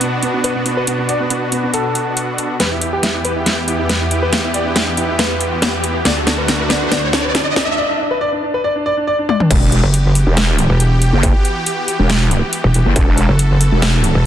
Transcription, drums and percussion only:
0.01 closed hi-hat
0.23 closed hi-hat
0.44 closed hi-hat
0.66 closed hi-hat
0.87 closed hi-hat
1.09 closed hi-hat
1.30 closed hi-hat
1.52 closed hi-hat
1.74 closed hi-hat
1.95 closed hi-hat
2.17 closed hi-hat
2.38 closed hi-hat
2.60 snare, closed hi-hat
2.81 closed hi-hat
3.03 snare, closed hi-hat
3.25 closed hi-hat
3.46 snare, closed hi-hat
3.68 closed hi-hat
3.89 snare, closed hi-hat
4.11 closed hi-hat
4.33 snare, closed hi-hat
4.54 closed hi-hat
4.76 snare, closed hi-hat
4.97 closed hi-hat
5.19 snare, closed hi-hat
5.41 closed hi-hat
5.62 snare, closed hi-hat
5.84 closed hi-hat
6.05 snare, closed hi-hat
6.27 snare, closed hi-hat
6.48 snare, closed hi-hat
6.70 snare, closed hi-hat
6.92 snare, closed hi-hat
7.13 snare, closed hi-hat
7.35 snare, closed hi-hat
7.56 snare, closed hi-hat
9.29 high tom
9.40 mid tom
9.51 kick, closed hi-hat, crash
9.72 closed hi-hat
9.94 closed hi-hat
10.15 open hi-hat
10.37 snare, closed hi-hat
10.58 closed hi-hat
10.80 closed hi-hat
11.02 closed hi-hat
11.23 kick, closed hi-hat
11.45 closed hi-hat
11.66 closed hi-hat
11.88 open hi-hat
12.10 snare, closed hi-hat
12.31 closed hi-hat
12.53 closed hi-hat
12.74 closed hi-hat
12.96 kick, closed hi-hat
13.18 closed hi-hat
13.39 closed hi-hat
13.61 open hi-hat
13.82 snare, closed hi-hat
14.04 closed hi-hat

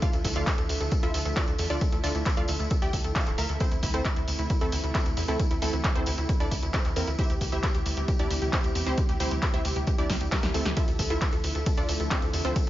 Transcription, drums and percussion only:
0.02 kick, closed hi-hat, tambourine
0.13 closed hi-hat, tambourine
0.25 kick, open hi-hat, tambourine
0.35 closed hi-hat, tambourine
0.47 kick, clap, closed hi-hat, tambourine
0.58 closed hi-hat, tambourine
0.69 open hi-hat, tambourine
0.81 closed hi-hat, tambourine
0.91 kick, closed hi-hat, tambourine
1.03 closed hi-hat, tambourine
1.14 open hi-hat, tambourine
1.25 closed hi-hat, tambourine
1.36 kick, clap, closed hi-hat, tambourine
1.48 closed hi-hat, tambourine
1.58 open hi-hat, tambourine
1.70 closed hi-hat, tambourine
1.81 kick, closed hi-hat, tambourine
1.92 closed hi-hat, tambourine
2.04 open hi-hat, tambourine
2.15 closed hi-hat, tambourine
2.25 kick, clap, closed hi-hat, tambourine
2.37 closed hi-hat, tambourine
2.48 open hi-hat, tambourine
2.60 closed hi-hat, tambourine
2.70 kick, closed hi-hat, tambourine
2.82 closed hi-hat, tambourine
2.93 kick, open hi-hat, tambourine
3.04 closed hi-hat, tambourine
3.16 kick, clap, closed hi-hat, tambourine
3.27 clap, closed hi-hat, tambourine
3.38 open hi-hat, tambourine
3.49 closed hi-hat, tambourine
3.60 kick, closed hi-hat, tambourine
3.71 closed hi-hat, tambourine
3.83 kick, open hi-hat, tambourine
3.94 closed hi-hat, tambourine
4.05 kick, clap, closed hi-hat, tambourine
4.16 closed hi-hat, tambourine
4.28 open hi-hat, tambourine
4.39 closed hi-hat, tambourine
4.50 kick, closed hi-hat, tambourine
4.61 closed hi-hat, tambourine
4.72 open hi-hat, tambourine
4.83 closed hi-hat, tambourine
4.95 kick, clap, closed hi-hat, tambourine
5.06 closed hi-hat, tambourine
5.17 open hi-hat, tambourine
5.28 closed hi-hat, tambourine
5.40 kick, closed hi-hat, tambourine
5.51 closed hi-hat, tambourine
5.62 open hi-hat, tambourine
5.73 closed hi-hat, tambourine
5.84 kick, clap, closed hi-hat, tambourine
5.95 closed hi-hat, tambourine
6.06 open hi-hat, tambourine
6.18 closed hi-hat, tambourine
6.29 kick, closed hi-hat, tambourine
6.40 closed hi-hat, tambourine
6.51 kick, open hi-hat, tambourine
6.63 closed hi-hat, tambourine
6.74 kick, clap, closed hi-hat, tambourine
6.85 clap, closed hi-hat, tambourine
6.96 open hi-hat, tambourine
7.07 closed hi-hat, tambourine
7.19 kick, closed hi-hat, tambourine
7.30 closed hi-hat, tambourine
7.41 kick, open hi-hat, tambourine
7.52 closed hi-hat, tambourine
7.63 kick, clap, closed hi-hat, tambourine
7.75 closed hi-hat, tambourine
7.86 open hi-hat, tambourine
7.97 closed hi-hat, tambourine
8.08 kick, closed hi-hat, tambourine
8.19 closed hi-hat, tambourine
8.30 open hi-hat, tambourine
8.42 closed hi-hat, tambourine
8.53 kick, clap, closed hi-hat, tambourine
8.63 closed hi-hat, tambourine
8.75 open hi-hat, tambourine
8.87 closed hi-hat, tambourine
8.97 kick, closed hi-hat, tambourine
9.09 closed hi-hat, tambourine
9.20 open hi-hat, tambourine
9.31 closed hi-hat, tambourine
9.42 kick, clap, closed hi-hat, tambourine
9.54 closed hi-hat, tambourine
9.65 open hi-hat, tambourine
9.76 closed hi-hat, tambourine
9.87 kick, closed hi-hat, tambourine
9.98 closed hi-hat, tambourine
10.10 kick, snare, open hi-hat, tambourine
10.20 closed hi-hat, tambourine
10.32 kick, snare, clap, closed hi-hat, tambourine
10.43 snare, closed hi-hat, tambourine
10.54 open hi-hat, tambourine
10.65 snare, closed hi-hat, tambourine
10.77 kick, closed hi-hat, ride, tambourine
10.88 closed hi-hat, tambourine
10.99 kick, open hi-hat, tambourine
11.10 closed hi-hat, tambourine
11.21 kick, clap, closed hi-hat, ride, tambourine
11.33 closed hi-hat, tambourine
11.44 open hi-hat, tambourine
11.55 closed hi-hat, tambourine
11.66 kick, closed hi-hat, ride, tambourine
11.77 closed hi-hat, tambourine
11.89 open hi-hat, tambourine
12.00 closed hi-hat, tambourine
12.11 kick, clap, closed hi-hat, ride, tambourine
12.22 closed hi-hat, tambourine
12.33 open hi-hat, tambourine
12.45 closed hi-hat, tambourine
12.56 kick, closed hi-hat, ride, tambourine

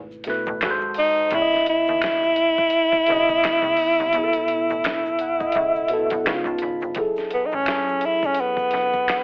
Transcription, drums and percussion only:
0.11 shaker
0.24 snare, closed hi-hat
0.46 kick, shaker
0.61 finger snap, snare, closed hi-hat, shaker
0.63 finger snap
0.81 shaker
0.94 open hi-hat
1.16 shaker
1.31 kick, closed hi-hat, shaker
1.52 snare, shaker
1.66 closed hi-hat
1.87 shaker
2.02 finger snap, snare, closed hi-hat, shaker
2.05 finger snap
2.23 shaker
2.36 closed hi-hat, shaker
2.58 kick, shaker
2.70 closed hi-hat, shaker
2.93 kick, shaker
3.06 snare, closed hi-hat
3.29 kick, shaker
3.44 finger snap, snare, closed hi-hat, shaker
3.46 finger snap
3.62 kick, shaker
3.77 open hi-hat
3.99 shaker
4.13 closed hi-hat, shaker
4.33 closed hi-hat, shaker
4.48 closed hi-hat
4.70 shaker
4.84 finger snap, snare, closed hi-hat, shaker
4.87 finger snap
5.06 shaker
5.19 closed hi-hat, shaker
5.40 kick, shaker
5.52 kick, closed hi-hat, shaker
5.75 shaker
5.88 closed hi-hat
6.10 kick, closed hi-hat, shaker
6.26 finger snap, snare, closed hi-hat, shaker
6.27 finger snap
6.44 kick, shaker
6.58 closed hi-hat
6.81 shaker
6.95 kick, closed hi-hat, shaker
7.16 snare, shaker
7.30 closed hi-hat, shaker
7.52 shaker
7.66 finger snap, snare, closed hi-hat, shaker
7.69 finger snap
7.88 shaker
8.01 closed hi-hat, shaker
8.23 kick, shaker
8.34 closed hi-hat, shaker
8.57 kick, shaker
8.71 snare, closed hi-hat, shaker
8.93 kick, shaker
9.08 finger snap, snare, closed hi-hat, shaker
9.10 finger snap

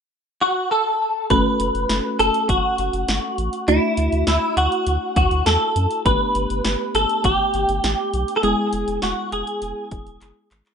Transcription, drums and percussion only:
1.30 kick, closed hi-hat
1.60 closed hi-hat
1.75 closed hi-hat
1.89 snare, closed hi-hat
2.19 closed hi-hat
2.34 closed hi-hat
2.49 kick, closed hi-hat
2.78 closed hi-hat
2.93 closed hi-hat
3.08 snare, closed hi-hat
3.38 closed hi-hat
3.53 closed hi-hat
3.68 closed hi-hat
3.97 closed hi-hat
4.12 closed hi-hat
4.27 snare, closed hi-hat
4.57 closed hi-hat
4.72 closed hi-hat
4.87 closed hi-hat
5.16 kick, closed hi-hat
5.31 closed hi-hat
5.46 snare, closed hi-hat
5.76 closed hi-hat
5.91 closed hi-hat
6.06 kick, closed hi-hat
6.35 closed hi-hat
6.50 closed hi-hat
6.65 snare, closed hi-hat
6.95 closed hi-hat
7.09 closed hi-hat
7.24 kick, closed hi-hat
7.54 closed hi-hat
7.69 closed hi-hat
7.84 snare, closed hi-hat
8.14 closed hi-hat
8.28 closed hi-hat
8.43 closed hi-hat
8.73 closed hi-hat
8.88 closed hi-hat
9.02 snare, closed hi-hat
9.32 closed hi-hat
9.47 closed hi-hat
9.62 closed hi-hat
9.91 kick, closed hi-hat
10.07 closed hi-hat
10.21 clap, closed hi-hat
10.51 clap, closed hi-hat
10.66 clap, closed hi-hat

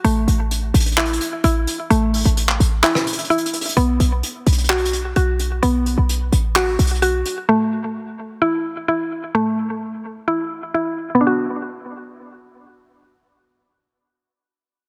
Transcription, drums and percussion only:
0.04 closed hi-hat
0.28 closed hi-hat
0.51 closed hi-hat
0.74 closed hi-hat
0.80 closed hi-hat
0.86 closed hi-hat
0.92 closed hi-hat
0.98 clap
1.05 closed hi-hat
1.13 closed hi-hat
1.21 closed hi-hat
1.44 closed hi-hat
1.67 closed hi-hat
1.91 closed hi-hat
2.14 closed hi-hat, open hi-hat
2.25 closed hi-hat
2.37 closed hi-hat
2.49 clap
2.60 closed hi-hat
2.84 clap, closed hi-hat
2.95 cross-stick
3.07 closed hi-hat
3.13 closed hi-hat
3.19 closed hi-hat
3.24 closed hi-hat
3.30 closed hi-hat
3.38 closed hi-hat
3.46 closed hi-hat
3.53 closed hi-hat
3.61 closed hi-hat
3.65 closed hi-hat
3.69 closed hi-hat
3.77 closed hi-hat
4.00 closed hi-hat
4.23 closed hi-hat
4.46 closed hi-hat
4.52 closed hi-hat
4.58 closed hi-hat
4.64 closed hi-hat
4.70 clap, closed hi-hat
4.77 closed hi-hat
4.85 closed hi-hat
4.93 closed hi-hat
5.16 closed hi-hat
5.39 closed hi-hat
5.63 closed hi-hat
5.86 closed hi-hat
6.09 closed hi-hat
6.32 closed hi-hat
6.56 clap, closed hi-hat
6.79 closed hi-hat
6.87 closed hi-hat
6.95 closed hi-hat
7.02 closed hi-hat
7.25 closed hi-hat

